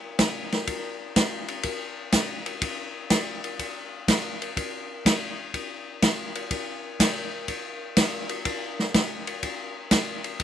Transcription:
0.19 kick, snare, hi-hat pedal, ride
0.52 snare, ride
0.67 kick, ride
1.16 kick, snare, hi-hat pedal, ride
1.48 ride
1.63 kick, ride
2.12 kick, snare, hi-hat pedal, ride
2.46 ride
2.62 kick, ride
3.10 kick, snare, hi-hat pedal, ride
3.44 ride
3.59 kick, ride
4.08 kick, snare, hi-hat pedal, ride
4.42 ride
4.57 kick, ride
5.05 kick, snare, hi-hat pedal, ride
5.54 kick, ride
6.02 kick, snare, hi-hat pedal, ride
6.35 ride
6.51 kick, ride
7.00 kick, snare, hi-hat pedal, ride
7.48 kick, ride
7.97 kick, snare, hi-hat pedal, ride
8.29 ride
8.45 kick, ride
8.79 snare
8.94 kick, snare, hi-hat pedal, ride
9.27 ride
9.43 kick, ride
9.91 kick, snare, hi-hat pedal, ride
10.24 ride
10.40 kick, ride

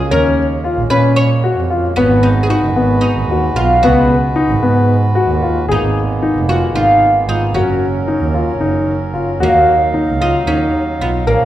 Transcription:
Already playing: G#3 A#3 C#4 G#4
0.11 D#2 C#4 A#4
0.64 F4
0.78 A#1
0.90 A#2 C#4 B4
1.16 C#5
1.44 F#4
1.58 F2
1.70 F4
1.96 G#1 G#3 B3 C#4 F#4 B4
2.23 D#4
2.43 G#4
2.50 D#4 F#4
2.63 F#1
2.76 G#1 B3
3.01 D#4
3.17 G#1
3.30 D#2 F#4
3.56 B1 F4
3.83 C#2 B3 F#4
4.36 D#4
4.49 G#1
4.63 G#2 B3
5.15 F#4
5.29 D#2
5.42 F4
5.69 G#1 G#3 A#3 B3 D#4 G#4
5.83 G#1
6.22 D#4
6.36 F1
6.49 F4 F#4
6.75 G#1 D#4 F4
7.28 G#1 D#4 F4
7.54 F#1 F#3 C#4 F#4 A#4
7.68 F#1
8.08 D#4
8.20 D#2
8.34 F4
8.61 F#1 D#4
9.14 F#1 F4
9.40 D#2 A#3 D#4 F#4 F5
9.54 D#2
9.94 D#4
10.07 C#2
10.21 D#4 F4
10.47 D#2 C#4 D#4
11.00 B1 B3 F4
11.26 A#1 F3 A#3 C#4 A#4
11.40 A#1

